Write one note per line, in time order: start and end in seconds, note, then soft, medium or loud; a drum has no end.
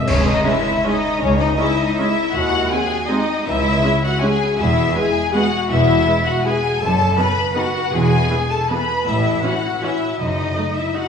0.05 0.39 C#2 medium
0.05 0.23 C#4 medium
0.05 0.24 C#4 loud
0.05 0.15 C#5 loud
0.05 concert bass drum medium
0.05 crash medium
0.25 0.45 D#4 medium
0.25 0.46 D#4 medium
0.25 0.46 D#5 loud
0.44 0.52 G#3 medium
0.44 0.52 C#4 medium
0.44 0.84 E4 medium
0.44 0.84 E5 loud
0.84 0.93 G#3 medium
0.84 0.92 C#4 medium
0.84 1.21 D#4 medium
0.84 1.22 D#5 loud
1.19 1.52 C#2 medium
1.19 1.38 C#4 medium
1.19 1.29 C#4 loud
1.19 1.40 C#5 loud
1.38 1.58 D#4 medium
1.38 1.47 D#4 medium
1.38 1.59 D#5 loud
1.56 1.67 G#3 medium
1.56 1.67 C#4 medium
1.56 1.77 E4 medium
1.56 1.78 E4 medium
1.56 1.79 E5 loud
1.76 1.97 D#4 medium
1.76 1.98 D#4 medium
1.76 1.97 D#5 loud
1.97 2.06 G#3 medium
1.97 2.06 C#4 medium
1.97 2.34 E4 medium
1.97 2.33 E5 loud
2.34 2.65 D#2 medium
2.34 2.71 F#4 medium
2.34 2.71 F#4 loud
2.34 2.71 F#5 loud
2.71 2.79 G#3 medium
2.71 2.79 C4 medium
2.71 3.09 G#4 medium
2.71 3.09 G#5 loud
3.09 3.18 G#3 medium
3.09 3.18 C4 medium
3.09 3.45 D#4 medium
3.09 3.47 D#4 medium
3.09 3.46 D#5 loud
3.46 3.77 C#2 medium
3.46 3.99 C#3 medium
3.46 4.03 E4 loud
3.46 4.04 E4 medium
3.46 4.02 E5 loud
3.83 3.91 G#3 medium
3.83 3.91 C#4 medium
4.03 4.22 F#4 medium
4.03 4.23 F#5 loud
4.21 4.30 G#3 medium
4.21 4.30 C#4 medium
4.21 4.59 G#4 medium
4.21 4.58 G#5 loud
4.58 4.89 E1 medium
4.58 4.89 E2 medium
4.58 4.95 E4 medium
4.58 4.96 E4 medium
4.58 4.95 E5 loud
4.95 5.04 G#3 medium
4.95 5.04 B3 medium
4.95 5.34 G#4 medium
4.95 5.33 G#4 medium
4.95 5.33 G#5 loud
5.33 5.41 G#3 medium
5.33 5.41 B3 medium
5.33 5.69 F#4 medium
5.33 5.70 F#4 medium
5.33 5.69 F#5 loud
5.70 6.00 E1 medium
5.70 6.00 E2 medium
5.70 6.25 E4 medium
5.70 6.26 E4 loud
5.70 6.25 E5 loud
6.06 6.14 G#3 medium
6.06 6.14 B3 medium
6.25 6.45 F#4 medium
6.25 6.46 F#5 loud
6.45 6.53 G#3 medium
6.45 6.53 B3 medium
6.45 6.81 G#4 medium
6.45 6.82 G#4 medium
6.45 6.80 G#5 loud
6.80 7.11 F#1 medium
6.80 7.11 F#2 medium
6.80 7.17 A4 medium
6.80 7.19 A5 loud
7.17 7.25 D#3 medium
7.17 7.25 B3 medium
7.17 7.56 B4 medium
7.17 7.57 B4 medium
7.17 7.56 B5 loud
7.55 7.64 D#3 medium
7.55 7.64 B3 medium
7.55 7.91 F#4 medium
7.55 7.93 F#4 medium
7.55 7.92 F#5 loud
7.92 8.23 E1 medium
7.92 8.23 E2 medium
7.92 8.49 G#4 medium
7.92 8.49 G#5 loud
8.30 8.38 E3 medium
8.30 8.38 B3 medium
8.50 8.68 A4 medium
8.50 8.69 A4 medium
8.50 8.69 A5 loud
8.70 8.78 E3 medium
8.70 8.78 B3 medium
8.70 9.06 B4 medium
8.70 9.07 B4 medium
8.70 9.06 B5 loud
9.06 9.37 A1 medium
9.06 9.37 A2 medium
9.06 9.42 E4 medium
9.06 9.43 E4 medium
9.06 9.43 E5 loud
9.43 9.51 E3 medium
9.43 9.51 C#4 medium
9.43 9.82 F#4 medium
9.43 9.82 F#5 loud
9.82 9.90 E3 medium
9.82 9.91 C#4 medium
9.82 10.18 E4 medium
9.82 10.19 E4 medium
9.82 10.19 E5 medium
10.19 10.50 F#1 medium
10.19 10.50 F#2 medium
10.19 10.76 D#4 medium
10.19 10.77 D#4 medium
10.19 10.76 D#5 loud
10.56 10.64 A3 medium
10.56 10.64 D#4 medium
10.76 10.95 E4 medium
10.76 10.95 E5 medium
10.94 11.02 A3 medium
10.94 11.02 D#4 medium
10.94 11.08 F#4 medium
10.94 11.08 F#5 medium